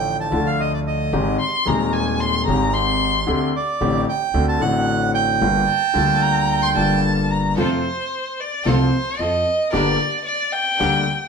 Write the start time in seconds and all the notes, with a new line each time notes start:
Already playing: A1 A2 D3 F3 A3 F4 G5
0.20 A5
0.31 D2 D3 F3 A3
0.35 F4
0.46 F5
0.60 D#5
0.74 D5
0.87 D#5
1.13 G#1 G#2 D#3 G#3 C4 G4
1.40 C6
1.65 D#1 D#2 D#3 G#3 C4 G4 A#5
1.93 G#5
2.20 C6
2.46 G#1 G#2 D#3 G#3 C4 A#5
2.50 G4
2.74 C6
3.27 D2 D3 A3 C4 G4
3.56 D5
3.81 A1 A2 D3 A3 C4 G4
4.09 G5
4.34 D2 D3 A3 C4 F#4
4.49 A5
4.59 A1 A2 D3 A3 C4 F#5
4.63 F#4
5.14 G5
5.41 G1 G2 D3 G3 A#3 F4
5.68 A5
5.94 D2 D3 G3 A#3 F4
6.22 A#5
6.63 C6
6.75 G1 G2 D3 G3 A#3 A5
6.79 F4
7.31 A#5
7.57 F2 C3 F3 A3 C4 F4 A4 C5
8.40 D5
8.65 C2 C3 F3 A3 C4 F4 A4 C5
9.19 F2 F3 C4 F4 A4 D#5
9.73 G1 G2 D3 G3 A#3 D4 G4 A#4 D5
10.26 D5
10.53 G5
10.79 D2 D3 G3 A#3 D4 G4 A#4